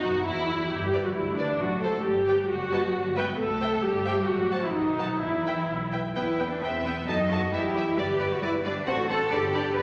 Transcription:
0.02 double bass section F#2, cello section F#3, viola section F#4, violin section F#4
0.25 double bass section E2, cello section E3, viola section E4, violin section E4
0.70 double bass section G1, cello section G3, viola section G4
0.93 violin section B4 D5
1.04 cello section F#3, viola section F#4
1.15 double bass section D2, cello section E3, viola section E4
1.37 cello section D3, viola section D4, violin section B4 D5
1.60 double bass section A1, cello section F#3, viola section F#4
1.83 cello section A3, viola section A4, violin section A4 C5
2.05 double bass section G1, cello section G3, viola section G4
2.27 violin section B4 D5 G5
2.50 double bass section F#1, cello section F#3, viola section F#4
2.72 violin section B4 D#5 A5
2.94 double bass section G1
3.16 cello section B3, violin section B4 E5 G5, viola section B4
3.39 double bass section C2, cello section A3, viola section A4
3.61 violin section C5 E5 G5
3.84 double bass section G1, cello section G3, viola section G4
4.07 violin section C5 E5 G5
4.29 double bass section A1, cello section F#3, viola section F#4
4.52 violin section C5 F#5 A5
4.64 cello section E3, viola section E4
4.75 double bass section B1, cello section D#3, viola section D#4
4.99 violin section B4 F#5 A5
5.21 double bass section E2, cello section E3, viola section E4
5.46 violin section B4 E5 G5
5.69 double bass section B1
5.92 violin section B4 E5 G5
6.16 double bass section E2, viola section B3 B4, cello section E4, violin section B4 G5
6.39 viola section B3 B4, violin section G5
6.52 cello section D4
6.62 double bass section E2, viola section B3 B4, cello section C4, violin section E5 G5
6.85 viola section B3 B4, cello section B3, violin section G5
7.07 double bass section F#2, viola section F#3 A4, cello section D#4, violin section D#5 A5
7.30 viola section F#3 A4, cello section F#4, violin section A5
7.52 double bass section E2, viola section G3 B4, cello section E4, violin section G4 E5
7.75 viola section G3 B4, violin section E5
7.96 double bass section G1, viola section G3 B4, cello section G4, violin section B4 D5
8.20 viola section G3 B4, violin section D5
8.33 cello section F#4
8.42 double bass section G1, viola section G3 B4, cello section E4, violin section B4 D5
8.65 viola section G3 B4, cello section D4, violin section D5
8.86 double bass section A1, viola section C4 C5, cello section F#4, violin section A4 F#5
9.09 viola section C4 C5, cello section A4, violin section F#5
9.31 double bass section G1, viola section D4 B4, cello section G4, violin section D5
9.54 viola section D4 B4, violin section D5
9.75 double bass section G1, viola section D4 B4, cello section B4, violin section D5

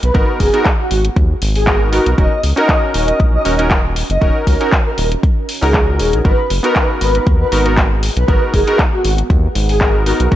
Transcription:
Already playing: ambient pad B3 G#4 F#5 A#5
0.03 analog synth bass B1, soft synth lead B4, closed hi-hat
0.14 analog synth bass G#1, synth keys B3 D#4 F#4 A#4, kick, closed hi-hat
0.40 analog synth bass F#1, soft synth lead G#4, kick, open hi-hat
0.53 synth keys B3 D#4 F#4 A#4, closed hi-hat
0.65 kick, clap, closed hi-hat
0.80 soft synth lead F#4
0.91 analog synth bass G#1, open hi-hat
1.05 closed hi-hat
1.16 analog synth bass D#2, kick, closed hi-hat
1.42 analog synth bass G#1, open hi-hat
1.55 soft synth lead G#4, open hi-hat
1.67 synth keys B3 D#4 F#4 A#4, kick, clap
1.92 synth keys B3 D#4 F#4 A#4, soft synth lead F#4, open hi-hat
2.06 analog synth bass B1, closed hi-hat
2.17 analog synth bass D#1, synth keys C#4 D#4 F#4 A#4, ambient pad C#4, soft synth lead D#5, kick, closed hi-hat
2.43 analog synth bass C#2, open hi-hat
2.48 ambient pad F#4
2.56 synth keys C#4 D#4 F#4 A#4, ambient pad D#5, soft synth lead D#5, closed hi-hat
2.69 kick, clap, closed hi-hat
2.94 analog synth bass D#1, soft synth lead D#5, open hi-hat
3.08 closed hi-hat
3.20 analog synth bass A#1, kick, closed hi-hat
3.34 soft synth lead D#5
3.45 analog synth bass D#1, synth keys C#4 D#4 F#4 A#4, open hi-hat
3.58 synth keys C#4 D#4 F#4 A#4, closed hi-hat
3.71 kick, clap, closed hi-hat
3.96 open hi-hat
4.10 analog synth bass F#1, soft synth lead D#5, closed hi-hat
4.21 analog synth bass D#1, synth keys C#4 D#4 F#4 A#4, kick, closed hi-hat
4.47 analog synth bass C#2, soft synth lead A#4, kick, open hi-hat
4.60 synth keys C#4 D#4 F#4 A#4, closed hi-hat
4.72 kick, clap, closed hi-hat
4.86 soft synth lead A#4
4.98 analog synth bass D#1, open hi-hat
5.12 closed hi-hat
5.23 kick, closed hi-hat
5.49 open hi-hat
5.61 analog synth bass C#2, synth keys C#4 D#4 F#4 A#4, soft synth lead G#4, open hi-hat
5.74 kick, clap, closed hi-hat
5.99 analog synth bass D#1, soft synth lead G#4, open hi-hat
6.13 analog synth bass A#1, closed hi-hat
6.24 analog synth bass G#1, synth keys B3 D#4 F#4 A#4, ambient pad B3, soft synth lead B4, kick, closed hi-hat
6.50 analog synth bass F#1, open hi-hat
6.58 ambient pad G#4
6.63 synth keys B3 D#4 F#4 A#4, soft synth lead B4, closed hi-hat
6.76 kick, clap, closed hi-hat
6.88 ambient pad F#5
7.01 analog synth bass G#1, soft synth lead B4, open hi-hat
7.15 closed hi-hat
7.27 analog synth bass D#2, kick, closed hi-hat
7.40 soft synth lead B4
7.51 analog synth bass G#1, synth keys B3 D#4 F#4 A#4, open hi-hat
7.65 synth keys B3 D#4 F#4 A#4, closed hi-hat
7.77 kick, clap, closed hi-hat
8.03 open hi-hat
8.17 analog synth bass B1, soft synth lead B4, closed hi-hat
8.28 analog synth bass G#1, synth keys B3 D#4 F#4 A#4, kick, closed hi-hat
8.54 analog synth bass F#1, soft synth lead G#4, kick, open hi-hat
8.67 synth keys B3 D#4 F#4 A#4, closed hi-hat
8.79 kick, clap, closed hi-hat
8.93 soft synth lead F#4
9.04 analog synth bass G#1, open hi-hat
9.18 closed hi-hat
9.30 analog synth bass D#2, kick, closed hi-hat
9.55 analog synth bass G#1, open hi-hat
9.69 soft synth lead G#4, open hi-hat
9.80 synth keys B3 D#4 F#4 A#4, kick, clap, closed hi-hat
10.06 synth keys B3 D#4 F#4 A#4, soft synth lead F#4, open hi-hat
10.20 analog synth bass B1, closed hi-hat
10.31 analog synth bass D#1, synth keys C#4 D#4 F#4 A#4, soft synth lead D#5, kick, closed hi-hat

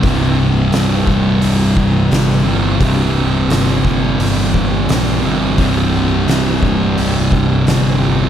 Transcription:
0.02 picked electric bass C1, distorted electric guitar C2 G2 C3, kick, open hi-hat
0.72 picked electric bass C1, snare, open hi-hat
1.07 kick
1.42 picked electric bass C1, open hi-hat
1.77 kick
2.11 picked electric bass G1, snare, open hi-hat
2.44 distorted electric guitar C2 G2 C3
2.79 picked electric bass C1, distorted electric guitar C2 G2, kick, open hi-hat
2.83 distorted electric guitar C3
3.50 picked electric bass G1, snare, open hi-hat
3.85 kick
4.20 picked electric bass G1, open hi-hat
4.54 kick
4.89 picked electric bass A#1, snare, open hi-hat
5.22 picked electric bass G1, distorted electric guitar C2 G2 C3
5.56 picked electric bass C1, distorted electric guitar C2 G2 C3, kick, open hi-hat
6.28 picked electric bass C1, snare, open hi-hat
6.63 kick
6.97 picked electric bass C1, open hi-hat
7.32 kick
7.66 picked electric bass G1, snare, open hi-hat
8.00 distorted electric guitar C2 G2 C3

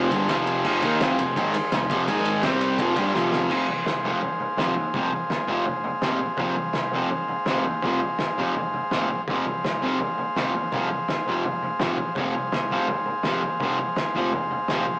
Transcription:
Already playing: picked electric bass F1, distorted electric guitar F2 C3 F3, transistor combo organ G#4 C5 F5
0.11 picked electric bass G1, distorted electric guitar G2 D3 G3, kick, ride
0.29 picked electric bass F1, distorted electric guitar F2 C3 F3, snare, ride
0.47 ride
0.64 picked electric bass F1, distorted electric guitar F2 C3 F3, kick, crash
0.82 picked electric bass D#2, distorted electric guitar D#3 A#3 D#4, kick, ride
1.00 picked electric bass F1, distorted electric guitar F2 C3 F3, snare, ride
1.18 picked electric bass F1, distorted electric guitar F2 C3, ride
1.36 picked electric bass G#1, distorted electric guitar G#2 D#3 G#3, kick, ride
1.54 muted picked electric bass stroke, muted distorted electric guitar stroke, ride
1.72 picked electric bass F1, distorted electric guitar F2 C3, snare, ride
1.90 picked electric bass F1, distorted electric guitar F2 C3 F3, kick, ride
2.08 picked electric bass G#1, distorted electric guitar G#2 D#3 G#3, transistor combo organ G#4 D#5 G#5, kick, ride
2.25 ride
2.43 picked electric bass C2, distorted electric guitar C3 G3 C4, transistor combo organ G4 C5 G5, snare, ride
2.61 ride
2.79 picked electric bass F1, distorted electric guitar F2 C3 F3, transistor combo organ G#4 C5 F5, kick, ride
2.96 picked electric bass G1, distorted electric guitar G2 D3 G3, kick, ride
3.14 picked electric bass F1, distorted electric guitar F2 C3 F3, snare
3.32 snare
3.49 picked electric bass F1, distorted electric guitar F2 C3 F3, transistor combo organ G#4 C5 F5, kick, floor tom, crash
3.67 picked electric bass C2, floor tom
3.85 picked electric bass C2, snare, floor tom
4.04 distorted electric guitar F2 C3 F3, floor tom
4.22 picked electric bass G#1, floor tom
4.40 floor tom
4.57 picked electric bass C2, distorted electric guitar F2 C3 F3, snare, floor tom
4.76 picked electric bass D#2, floor tom
4.94 picked electric bass C2, distorted electric guitar F2 C3 F3, kick, floor tom
5.12 floor tom
5.30 picked electric bass G#1, snare, floor tom
5.48 distorted electric guitar F2 C3 F3, floor tom
5.66 picked electric bass F1, floor tom
5.84 floor tom
6.01 picked electric bass A#1, distorted electric guitar F2 C3 F3, snare, floor tom
6.19 floor tom
6.34 picked electric bass F1, transistor combo organ G#4 C5 F5, floor tom
6.38 distorted electric guitar F2 C3 F3, kick
6.55 picked electric bass C2, floor tom
6.73 picked electric bass C2, snare, floor tom
6.92 distorted electric guitar F2 C3 F3, floor tom
7.10 picked electric bass G#1, floor tom
7.28 floor tom
7.46 picked electric bass C2, distorted electric guitar F2 C3 F3, snare, floor tom
7.63 picked electric bass D#2, floor tom
7.82 picked electric bass C2, distorted electric guitar F2 C3 F3, kick, floor tom
8.01 floor tom
8.18 picked electric bass G#1, snare, floor tom
8.38 distorted electric guitar F2 C3 F3, floor tom
8.56 picked electric bass F1, floor tom
8.74 floor tom
8.91 picked electric bass A#1, distorted electric guitar F2 C3 F3, snare, floor tom
9.10 floor tom
9.28 picked electric bass F1, distorted electric guitar F2 C3 F3, transistor combo organ G#4 C5 F5, kick, floor tom
9.46 picked electric bass C2, floor tom
9.64 picked electric bass C2, snare, floor tom
9.82 distorted electric guitar F2 C3 F3, floor tom
10.00 picked electric bass G#1, floor tom
10.18 floor tom
10.36 picked electric bass C2, distorted electric guitar F2 C3 F3, snare, floor tom
10.55 picked electric bass D#2, floor tom
10.72 picked electric bass C2, distorted electric guitar F2 C3 F3, kick, floor tom
10.91 floor tom
11.08 picked electric bass G#1, snare, floor tom
11.27 distorted electric guitar F2 C3 F3, floor tom
11.44 picked electric bass F1, floor tom
11.63 floor tom
11.79 picked electric bass A#1, distorted electric guitar F2 C3 F3, snare, floor tom
11.98 floor tom
12.15 picked electric bass F1, distorted electric guitar F2 C3 F3, transistor combo organ G#4, kick, floor tom
12.19 transistor combo organ C5 F5
12.34 picked electric bass C2, floor tom
12.52 picked electric bass C2, snare, floor tom
12.70 distorted electric guitar F2 C3 F3, floor tom
12.88 picked electric bass G#1, floor tom
13.06 floor tom
13.23 picked electric bass C2, distorted electric guitar F2 C3, snare, floor tom
13.28 distorted electric guitar F3
13.42 picked electric bass D#2, floor tom
13.60 picked electric bass C2, distorted electric guitar F2 C3 F3, kick, floor tom
13.78 floor tom
13.96 picked electric bass G#1, snare, floor tom
14.15 distorted electric guitar F2 C3 F3, floor tom
14.33 picked electric bass F1, floor tom
14.51 floor tom
14.68 picked electric bass A#1, distorted electric guitar F2 C3 F3, snare, floor tom
14.85 floor tom

